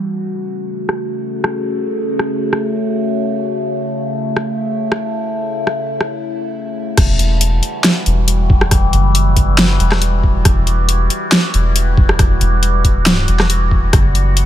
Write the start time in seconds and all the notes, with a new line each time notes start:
Already playing: F#4
0.02 C#3 A3
0.89 cross-stick
1.44 cross-stick
2.19 cross-stick
2.53 cross-stick
3.50 E4
4.37 cross-stick
4.92 cross-stick
5.67 cross-stick
6.01 cross-stick
6.97 E1 E3 G3 F#4, kick, cross-stick, closed hi-hat, crash
7.19 closed hi-hat
7.41 closed hi-hat
7.63 closed hi-hat
7.84 snare, closed hi-hat
8.06 E1, closed hi-hat
8.28 closed hi-hat
8.50 kick
8.61 cross-stick
8.71 kick, cross-stick, closed hi-hat
8.93 F#1, closed hi-hat
9.15 closed hi-hat
9.37 kick, closed hi-hat
9.58 snare, closed hi-hat
9.80 E1, closed hi-hat
9.92 cross-stick, snare
10.02 closed hi-hat
10.23 kick
10.45 E1, kick, cross-stick, closed hi-hat
10.67 closed hi-hat
10.89 closed hi-hat
11.10 closed hi-hat
11.32 snare, closed hi-hat
11.54 E1, closed hi-hat
11.76 closed hi-hat
11.97 kick
12.09 cross-stick
12.19 kick, cross-stick, closed hi-hat
12.41 E1, closed hi-hat
12.63 closed hi-hat
12.84 kick, closed hi-hat
13.06 snare, closed hi-hat
13.28 E1, closed hi-hat
13.40 cross-stick, snare
13.50 closed hi-hat
13.71 kick
13.93 F#1 C#3 A3, kick, cross-stick, closed hi-hat
14.15 closed hi-hat
14.37 closed hi-hat